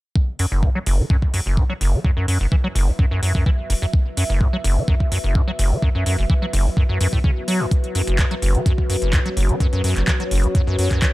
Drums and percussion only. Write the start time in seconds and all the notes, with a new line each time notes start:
0.16 kick
0.39 open hi-hat
0.63 kick
0.86 open hi-hat
1.10 kick
1.22 kick
1.34 open hi-hat
1.57 kick
1.81 open hi-hat
2.05 kick
2.28 open hi-hat
2.52 kick
2.76 open hi-hat
2.99 kick
3.23 open hi-hat
3.35 kick
3.46 kick
3.70 open hi-hat
3.94 kick
4.17 open hi-hat
4.41 kick
4.64 open hi-hat
4.88 kick
5.00 kick
5.12 open hi-hat
5.35 kick
5.59 open hi-hat
5.82 kick
6.06 open hi-hat
6.30 kick
6.53 open hi-hat
6.77 kick
7.01 open hi-hat
7.13 kick
7.24 kick
7.48 open hi-hat
7.71 kick, closed hi-hat
7.84 closed hi-hat
7.95 open hi-hat
8.07 closed hi-hat
8.19 kick, clap, closed hi-hat
8.31 closed hi-hat
8.42 open hi-hat
8.55 closed hi-hat
8.66 kick, closed hi-hat
8.78 kick
8.90 open hi-hat
9.02 closed hi-hat
9.13 kick, clap, closed hi-hat
9.26 closed hi-hat
9.37 open hi-hat
9.49 closed hi-hat
9.60 kick, closed hi-hat
9.73 closed hi-hat
9.84 open hi-hat
9.96 clap, closed hi-hat
10.08 kick, clap, closed hi-hat
10.20 closed hi-hat
10.31 open hi-hat
10.44 closed hi-hat
10.55 kick, closed hi-hat
10.79 open hi-hat
10.91 kick, clap, closed hi-hat
11.02 kick, clap, closed hi-hat